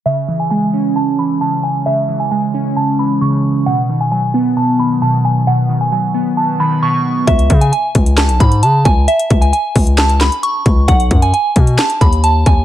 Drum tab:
HH |----------------|----------------|----------------|----------------|
CP |----------------|----------------|----------------|----------------|
SD |----------------|----------------|----------------|----------------|
BD |----------------|----------------|----------------|----------------|

HH |xxxxx-xxxxxxx-x-|xxxxx-oxxxxxx-x-|xxxxx-xxxxxxx-x-|
CP |--------x-------|--------x-x-----|--------x-------|
SD |--------o-------|--------o-o-----|--------o-------|
BD |o-o---o---o---o-|--o---o-------o-|o-o---o---o---o-|